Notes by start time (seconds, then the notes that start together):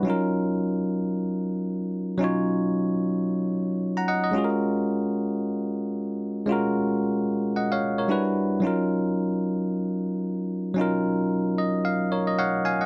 0.03 F#3 C#4 D#4
0.08 F4 A#4
2.18 F#3 C#4 D#4
2.22 F4 C#5
3.97 F#5 A#5
4.08 D#5 F#5
4.24 D#5
4.31 G#3 C#4 F4
4.36 F#4 G#4
4.44 A#4
6.46 G#3 C#4 F4
6.51 F#4 A#4
7.56 D#5 F#5
7.72 C#5 F5
7.98 A#4 C#5
8.08 G3 D4 E4 F#4 B4
8.60 F#3 C#4 D#4
8.65 F4 A#4
10.74 F#3 C#4 D#4
10.79 F4 A#4
11.58 D#5
11.85 F5
12.12 A#4 C#5
12.27 D#5
12.39 C#5 F5 F#5
12.65 F5 G#5
12.81 D#5 F#5